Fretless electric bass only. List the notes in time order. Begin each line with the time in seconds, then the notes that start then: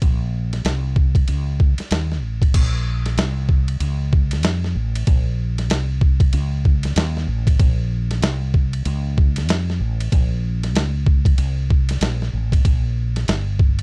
0.02 A#1
0.65 C2
1.28 C#2
1.91 D#2
2.23 A1
2.54 A#1
3.17 C2
3.80 C#2
4.44 F2
4.75 A1
5.07 A#1
5.70 C2
6.33 C#2
6.96 D#2
7.28 A1
7.60 A#1
8.22 C2
8.86 C#2
9.49 F2
9.80 A1
10.12 A#1
10.75 C#2
11.38 C2
12.01 A#1
12.33 A1
12.65 A#1
13.28 G1